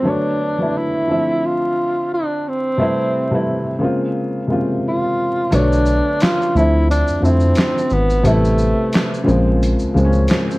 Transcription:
Already playing: tenor saxophone C4
0.03 upright piano D3 F#3 A3 B3
0.07 tenor saxophone D4, upright piano C#5
0.58 upright piano D3 F#3 A3 B3
0.62 upright piano E4
0.78 tenor saxophone E4
1.07 upright piano D3 F3 A3 C4
1.12 upright piano E5
1.46 tenor saxophone F4
2.14 tenor saxophone D4
2.49 tenor saxophone C4
2.78 upright piano C3 G3 A3 B4
2.82 upright piano E4
3.31 upright piano C3 G3 A3 E4 B4
3.79 upright piano C#3 G#3 A#3 C4
3.83 upright piano F4
4.47 upright piano C3 G#3 A#3 C4
4.52 upright piano C#3 F4
4.88 tenor saxophone F4
5.51 tine electric piano B1, upright piano D3 F#3 A3 B3, closed hi-hat, shaker
5.55 tenor saxophone D4, upright piano C#5
5.73 shaker
5.86 shaker
6.21 tenor saxophone F4, snare, clap, closed hi-hat, shaker
6.42 shaker
6.55 tine electric piano D2, upright piano D3 F3 A3 C4 E4, tenor saxophone E4, shaker
6.91 tenor saxophone D4, closed hi-hat, shaker
7.08 tine electric piano F2, shaker
7.20 tine electric piano F2, upright piano D3 F3 A3 C4, tenor saxophone C4
7.25 upright piano E4, shaker
7.40 shaker
7.55 snare, clap, closed hi-hat, shaker
7.78 shaker
7.90 tine electric piano G#1, tenor saxophone B3, shaker
8.10 shaker
8.23 tine electric piano A1, upright piano C3 G3 A3 B3, closed hi-hat, shaker
8.27 tenor saxophone A3, upright piano E4
8.45 shaker
8.58 shaker
8.93 snare, clap, closed hi-hat, shaker
9.14 shaker
9.24 upright piano C#3 F3 G#3 A#3
9.28 tine electric piano A#1, upright piano C4, shaker
9.63 closed hi-hat, shaker
9.79 tine electric piano C#2, shaker
9.94 tine electric piano C#2, upright piano C#3 F3 G#3 A#3 C4, shaker
10.05 upright piano C#4
10.13 shaker
10.28 tenor saxophone C4, snare, clap, closed hi-hat, shaker
10.51 shaker

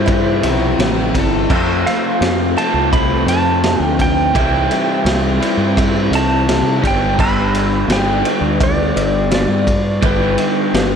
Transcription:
Already playing: fingered electric bass G2, overdriven electric guitar C3 E3 G3 C4 E4, string machine G3 C4 E4 C5, electric slide guitar C5
0.06 kick, ride, cowbell
0.43 fingered electric bass B1, lead electric guitar D4 A#4, ride, cowbell
0.79 fingered electric bass A1, lead electric guitar D4 A#4, snare, ride, cowbell
1.14 fingered electric bass G1, kick, ride
1.18 lead electric guitar A4
1.49 overdriven electric guitar F2 C3 F3 A3 C4 F4, fingered electric bass F2, string machine A3 C4 F4 C5, kick, cowbell, crash
1.86 electric slide guitar F5, snare, ride, cowbell
2.21 fingered electric bass F2, snare, ride
2.57 overdriven electric guitar F2 C3 F3 A3 C4 F4, electric slide guitar A5, ride, cowbell
2.74 fingered electric bass C2
2.93 electric slide guitar B5, kick, ride, cowbell
3.26 fingered electric bass F2, electric slide guitar A5, ride, cowbell
3.64 snare, ride, cowbell
3.80 fingered electric bass D2, electric slide guitar G5
3.99 electric slide guitar G5, kick, ride
4.33 fingered electric bass C2, overdriven electric guitar C3 E3 G3 C4, string machine G3 C4 E4 C5, kick, ride, cowbell
4.37 overdriven electric guitar E4
4.71 ride, cowbell
5.05 fingered electric bass C2, snare, ride
5.40 overdriven electric guitar C3 E3 G3 C4 E4, ride
5.57 fingered electric bass G2
5.77 kick, ride, cowbell
6.11 fingered electric bass C2, ride, cowbell
6.15 electric slide guitar A5
6.49 snare, ride, cowbell
6.63 fingered electric bass C3
6.81 fingered electric bass G1, overdriven electric guitar G2 D3 G3 B3 D4 G4, string machine G3 B3 D4 B4, kick, ride
6.87 electric slide guitar G5
7.19 electric slide guitar B5, kick, cowbell, crash
7.55 ride, cowbell
7.88 fingered electric bass G1, overdriven electric guitar G2 D3 G3 B3 D4, snare, ride
7.92 overdriven electric guitar G4, electric slide guitar G5
8.25 ride, cowbell
8.41 fingered electric bass D2
8.60 electric slide guitar D5, kick, ride, cowbell
8.96 fingered electric bass G1, ride, cowbell
9.31 electric slide guitar D5, snare, ride, cowbell
9.48 fingered electric bass G2
9.67 kick, ride
10.02 fingered electric bass G1, overdriven electric guitar G2 D3 G3 B3 D4 G4, string machine G3 B3 D4 B4, electric slide guitar B4, kick, ride, cowbell
10.38 ride, cowbell
10.74 fingered electric bass G1, snare, ride

